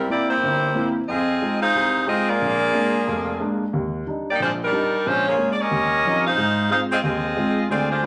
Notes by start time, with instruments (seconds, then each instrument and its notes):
0.09 upright piano A#3 C4 E4, saxophone section A#3 E4 G4 D5
0.30 saxophone section A#3 E4 G4 C5
0.42 upright piano G1
0.75 upright piano A#3 C4 E4
1.08 upright piano F2, saxophone section C4 F4 G#4 D#5
1.42 upright piano G#3 D#4 F4
1.62 saxophone section D#4 G#4 C5 F5
1.75 upright piano C2
2.07 upright piano G#3 D#4 F4, saxophone section C4 F4 G#4 D#5
2.30 saxophone section A#3 F4 G#4 D5
2.41 upright piano A#1
2.74 upright piano G#3 A#3 D4
3.07 upright piano F1
3.40 upright piano G#3 A#3 D4
3.73 upright piano D#2
4.07 upright piano G3 D4 D#4
4.31 saxophone section A#3 D#4 G4 D5
4.39 upright piano A#1, saxophone section G#3 D4 F4 C5
4.64 saxophone section G3 D4 D#4 A#4
4.72 upright piano G3 D4 D#4
5.06 upright piano A#1, saxophone section G#3 C#4 F4 C5
5.28 saxophone section A#3 F4 G#4 C#5
5.38 upright piano G#3 A#3 C#4
5.52 saxophone section D5
5.62 saxophone section C#4 G4 A#4 D#5
5.71 upright piano D#2
6.05 upright piano F3 G3 C4 C#4 D#4
6.27 saxophone section D#4 G#4 C5 F5
6.38 upright piano G#2
6.70 upright piano G#3 C4 F4, saxophone section D#4 G#4 C5 F5
6.92 saxophone section C4 F4 G#4 D#5
7.03 upright piano D#2, saxophone section C4 F4 G#4 D#5
7.37 upright piano G#3 C4 F4
7.70 upright piano D2, saxophone section C4 F4 G#4 D5
7.91 saxophone section G#3 D4 F4 C5
8.03 upright piano C4